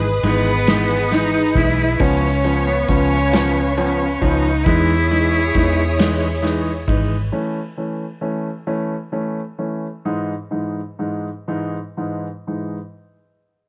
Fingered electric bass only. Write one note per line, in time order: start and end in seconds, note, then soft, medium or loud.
0.00 0.19 G#1 loud
0.23 1.52 G#1 medium
1.55 1.97 B1 medium
2.00 2.85 C#2 loud
2.89 4.18 C#2 medium
4.21 4.63 C#2 medium
4.66 5.51 E2 loud
5.55 6.84 E2 medium
6.88 7.30 G#1 medium